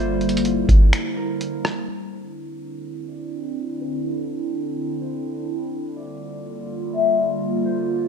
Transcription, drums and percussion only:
0.21 closed hi-hat
0.29 closed hi-hat
0.37 closed hi-hat
0.45 closed hi-hat
0.69 kick, closed hi-hat
0.93 finger snap, closed hi-hat
1.41 closed hi-hat
1.65 cross-stick

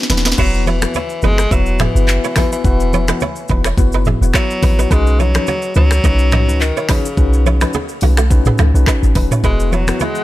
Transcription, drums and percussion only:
0.03 snare
0.10 snare, high conga, low conga, shaker
0.17 snare
0.25 snare, shaker
0.32 snare
0.38 kick, crash, shaker
0.54 shaker
0.67 high conga, shaker
0.82 finger snap, cross-stick, high conga, shaker
0.94 low conga, shaker
1.09 shaker
1.22 high conga, low conga, shaker
1.38 finger snap, cross-stick, shaker
1.51 kick, low conga, shaker
1.66 shaker
1.79 finger snap, cross-stick, mid tom, high conga, shaker
1.96 shaker
2.08 clap, shaker
2.24 shaker
2.36 finger snap, kick, cross-stick, open hi-hat, high conga, low conga, shaker
2.52 shaker
2.64 kick, shaker
2.80 shaker
2.93 high conga, shaker
3.08 finger snap, cross-stick, high conga, shaker
3.20 low conga, shaker
3.36 shaker
3.48 kick, high conga, low conga, shaker
3.64 finger snap, cross-stick, shaker
3.78 kick, low conga, shaker
3.92 shaker
4.05 mid tom, high conga, shaker
4.23 shaker
4.34 finger snap, kick, cross-stick, clap, shaker
4.51 shaker
4.63 kick, open hi-hat, high conga, low conga, shaker
4.79 shaker
4.91 kick, shaker
5.07 shaker
5.20 high conga, shaker
5.35 finger snap, cross-stick, high conga, shaker
5.47 low conga, shaker
5.62 shaker
5.74 high conga, low conga, shaker
5.91 finger snap, cross-stick, shaker
6.04 kick, low conga, shaker
6.19 shaker
6.31 finger snap, cross-stick, mid tom, high conga, shaker
6.49 shaker
6.61 clap, shaker
6.77 shaker
6.89 finger snap, kick, cross-stick, open hi-hat, high conga, low conga, shaker
7.05 shaker
7.17 kick, shaker
7.33 shaker
7.46 high conga, shaker
7.61 finger snap, cross-stick, high conga, shaker
7.73 low conga, shaker
7.89 shaker
8.01 open hi-hat, high conga, low conga, shaker
8.17 finger snap, cross-stick, shaker
8.30 kick, low conga, shaker
8.45 mid tom, shaker
8.58 finger snap, cross-stick, high conga, shaker
8.75 shaker
8.86 finger snap, kick, cross-stick, clap, shaker
9.03 shaker
9.15 kick, open hi-hat, high conga, low conga, shaker
9.31 mid tom, shaker
9.44 kick, shaker
9.60 shaker
9.72 high conga, shaker
9.87 finger snap, cross-stick, high conga, shaker
10.00 low conga, shaker
10.15 shaker

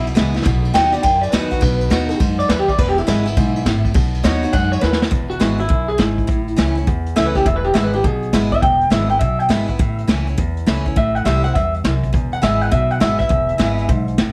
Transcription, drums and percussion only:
0.07 ride
0.17 snare, ride
0.36 snare
0.42 kick, snare, ride
0.65 ride
0.75 snare, ride
0.93 ride
1.04 kick, ride
1.23 ride
1.33 snare, ride
1.52 kick, ride
1.62 kick, ride
1.81 ride
1.91 snare, ride
2.10 snare, ride
2.20 kick, ride
2.39 ride
2.50 snare, ride
2.68 kick, ride
2.79 kick, ride
2.98 ride
3.08 snare, ride
3.27 ride
3.37 kick, ride
3.56 ride
3.66 snare, ride
3.85 kick, ride
3.95 kick, ride
4.14 ride
4.25 snare, ride
4.43 ride
4.53 kick, ride
4.72 ride
4.83 snare
4.93 snare
5.02 snare
5.12 kick, closed hi-hat
5.31 closed hi-hat
5.41 snare, closed hi-hat
5.60 closed hi-hat
5.70 kick, closed hi-hat
5.89 closed hi-hat
5.99 snare, closed hi-hat
6.18 kick, closed hi-hat
6.29 kick, closed hi-hat
6.48 closed hi-hat
6.58 snare, closed hi-hat
6.77 closed hi-hat
6.87 kick, closed hi-hat
7.06 closed hi-hat
7.17 snare, closed hi-hat
7.35 kick, snare, closed hi-hat
7.46 kick, closed hi-hat
7.64 closed hi-hat
7.75 snare, closed hi-hat
7.94 closed hi-hat
8.04 kick, closed hi-hat
8.23 closed hi-hat
8.33 snare, closed hi-hat
8.52 kick, closed hi-hat
8.62 kick, closed hi-hat
8.81 closed hi-hat
8.92 snare, closed hi-hat
9.10 closed hi-hat
9.21 kick, closed hi-hat
9.40 closed hi-hat
9.50 snare, closed hi-hat
9.69 kick, closed hi-hat
9.80 kick, closed hi-hat
9.99 closed hi-hat
10.09 snare, closed hi-hat
10.28 closed hi-hat
10.38 kick, closed hi-hat
10.57 closed hi-hat
10.67 snare, closed hi-hat
10.86 kick, closed hi-hat
10.97 kick, closed hi-hat
11.16 closed hi-hat
11.26 snare, closed hi-hat
11.45 closed hi-hat
11.55 kick, closed hi-hat
11.74 closed hi-hat
11.85 snare, closed hi-hat
12.03 kick, closed hi-hat
12.14 kick, closed hi-hat
12.33 closed hi-hat
12.43 snare, closed hi-hat
12.62 closed hi-hat
12.72 kick, closed hi-hat
12.91 closed hi-hat
13.01 snare, closed hi-hat
13.20 kick, snare, closed hi-hat
13.30 kick, closed hi-hat
13.49 closed hi-hat
13.60 snare, closed hi-hat
13.78 closed hi-hat
13.89 kick, closed hi-hat
14.08 closed hi-hat
14.18 snare, closed hi-hat

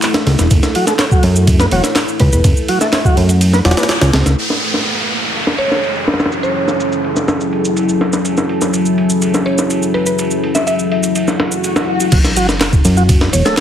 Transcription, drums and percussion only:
0.02 clap, ride, shaker
0.14 snare, shaker
0.27 snare, ride
0.39 snare, shaker
0.51 kick, ride, shaker
0.63 snare, shaker
0.75 ride
0.87 snare, shaker
0.99 snare, clap, ride, shaker
1.11 kick, shaker
1.23 ride
1.36 shaker
1.47 kick, ride, shaker
1.60 snare, shaker
1.71 ride
1.84 snare, shaker
1.95 snare, clap, ride, shaker
2.08 shaker
2.20 kick, ride
2.33 shaker
2.44 kick, ride, shaker
2.57 shaker
2.68 ride
2.81 snare, shaker
2.93 snare, clap, ride, shaker
3.05 kick, shaker
3.17 ride
3.29 ride, shaker
3.41 ride, shaker
3.53 snare, shaker
3.65 snare, ride
3.71 snare, ride
3.77 snare, ride, shaker
3.83 snare, ride
3.89 snare, clap, ride, shaker
4.01 snare, ride, shaker
4.13 snare, ride
4.26 snare, shaker
4.38 ride, shaker
4.50 snare
4.62 ride
4.74 snare
4.86 ride
5.11 ride
5.23 shaker
5.35 ride, shaker
5.47 snare, shaker
5.59 ride
5.71 snare, shaker
5.83 ride, shaker
5.96 shaker
6.08 snare, ride
6.14 snare, ride
6.20 snare, ride, shaker
6.26 snare, ride
6.31 ride, shaker
6.44 shaker
6.56 ride
6.68 snare, shaker
6.80 ride, shaker
6.92 shaker
7.04 ride
7.16 snare, shaker
7.28 snare, ride, shaker
7.41 shaker
7.53 ride
7.65 shaker
7.77 ride, shaker
7.89 shaker
8.01 snare, ride
8.13 snare, shaker
8.25 ride, shaker
8.37 snare, shaker
8.49 ride
8.61 snare, shaker
8.74 ride, shaker
8.86 shaker
8.98 ride
9.10 shaker
9.22 ride, shaker
9.34 snare, shaker
9.47 ride
9.58 snare, shaker
9.70 ride, shaker
9.82 shaker
9.95 ride
10.06 shaker
10.19 ride, shaker
10.31 shaker
10.44 ride
10.55 snare, shaker
10.67 ride, shaker
10.79 shaker
10.92 ride
11.03 ride, shaker
11.15 ride, shaker
11.28 snare, shaker
11.40 snare, ride
11.52 shaker
11.64 ride, shaker
11.76 snare, ride, shaker
12.00 ride, shaker
12.12 kick, crash, ride, shaker
12.24 snare, shaker
12.37 ride, shaker
12.49 snare, shaker
12.61 snare, clap, ride, shaker
12.73 kick, shaker
12.85 ride, shaker
12.97 shaker
13.09 kick, ride, shaker
13.21 snare
13.33 ride, shaker
13.45 snare, shaker

